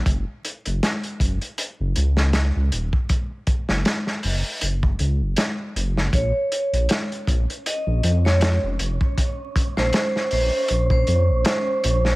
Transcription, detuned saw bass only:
X:1
M:4/4
L:1/16
Q:"Swing 16ths" 1/4=79
K:Bbm
V:1 name="Detuned saw bass" clef=bass
G,,, z2 G,,, z2 G,,, z2 G,,, D,,3 D,, E,,, z | z3 G,,, z2 G,,, z G,,,2 D,, G,,, z2 G,,,2 | B,,, z2 B,,, z2 B,,, z2 B,,, F,,3 F,,, F,,, z | z3 B,,, z2 B,,, z B,,,2 F,, B,,, z2 B,,,2 |]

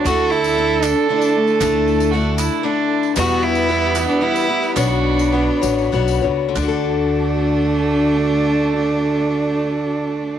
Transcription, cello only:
X:1
M:3/4
L:1/16
Q:1/4=108
K:D
V:1 name="Cello"
F2 E4 D2 D2 A,2- | A,8 z4 | F2 E4- E D E4 | D8- D2 z2 |
D12- | D12 |]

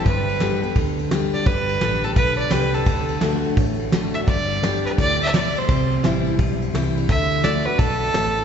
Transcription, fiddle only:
X:1
M:4/4
L:1/8
Q:"Swing" 1/4=171
K:G
V:1 name="Fiddle"
B4 z3 d | B3 A B d B A- | A2 z4 z e | d3 B d e d c- |
c2 z6 | e2 d B A4 |]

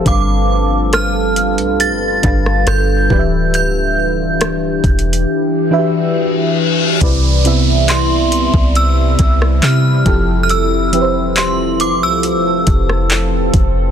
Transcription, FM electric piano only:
X:1
M:4/4
L:1/8
Q:1/4=69
K:C
V:1 name="FM electric piano"
[G,DABf]3 z2 [G,DABf]2 [E,DGBde]- | [E,DGBde]2 z3 [E,D^FGBe]2 z | [C,CEBd] [C,B,CEe]3 z3 [F,CEGA]- | [F,CEGA] [F,CEGBc]3 z4 |]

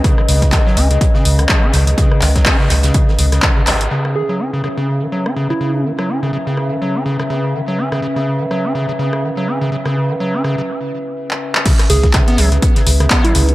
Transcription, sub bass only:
X:1
M:4/4
L:1/8
Q:"Swing 16ths" 1/4=124
K:C#m
V:1 name="Sub bass" clef=bass
z C,, z C,, z C,, z C,, | z C,, z C,, z C,, z G,,, | z8 | z8 |
z8 | z8 | z C,, z C,, z C,, z C,, |]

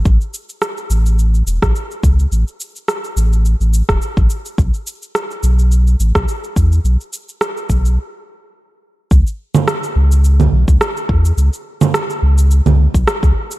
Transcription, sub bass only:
X:1
M:4/4
L:1/16
Q:"Swing 16ths" 1/4=106
K:C#m
V:1 name="Sub bass" clef=bass
A,,, z4 z A,,,4 E,,, A,,, z2 C,,2 | A,,, z4 z A,,,3 A,,,2 E,,, z A,,, z2 | B,,, z4 z B,,,4 A,,, B,,, z2 E,,2 | B,,, z4 z B,,,2 z8 |
C,, z4 z C,,4 B,,, C,, z2 E,,2 | C,, z4 z C,,3 C,,2 B,,, z C,, z2 |]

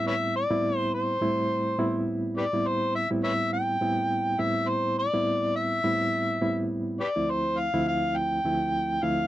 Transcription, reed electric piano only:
X:1
M:4/4
L:1/16
Q:"Swing 16ths" 1/4=104
K:Am
V:1 name="Reed electric piano"
[A,,G,B,CE]3 [A,,G,B,CE]4- [A,,G,B,CE] [A,,G,A,CE]4 [A,,G,B,CE]4- | [A,,G,B,CE] [A,,G,B,CE]4 [A,,G,B,CE]4- [A,,G,B,CE] [A,,G,B,CE]4 [A,,G,B,CE]2- | [A,,G,B,CE]3 [A,,G,B,CE]4- [A,,G,B,CE] [A,,G,B,CE]4 [A,,G,B,CE]4 | z [D,,F,A,CE]4 [D,,F,A,CE]4- [D,,F,A,CE] [D,,F,A,CE]4 [D,,F,A,CE]2 |]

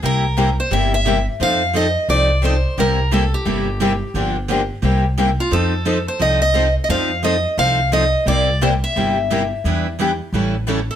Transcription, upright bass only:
X:1
M:4/4
L:1/8
Q:"Swing" 1/4=175
K:Cmix
V:1 name="Upright bass" clef=bass
C,,4 G,,,4 | F,,4 C,,4 | C,,4 G,,,4 | G,,,4 C,,4 |
F,,4 C,,4 | F,,4 C,,4 | C,,4 G,,,4 | E,,4 A,,,4 |]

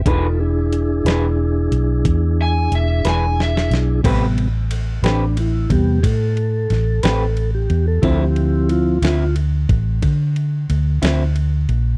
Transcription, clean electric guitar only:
X:1
M:12/8
L:1/8
Q:3/8=60
K:Am
V:1 name="Clean electric guitar"
[E,D^GB] z2 [E,DGB] z4 z [E,DGB] z2 | [A,CGB] z2 [A,CGB] z4 z [A,CGB] z2 | [D,F,CE] z2 [D,F,CE] z4 z [D,F,CE] z2 |]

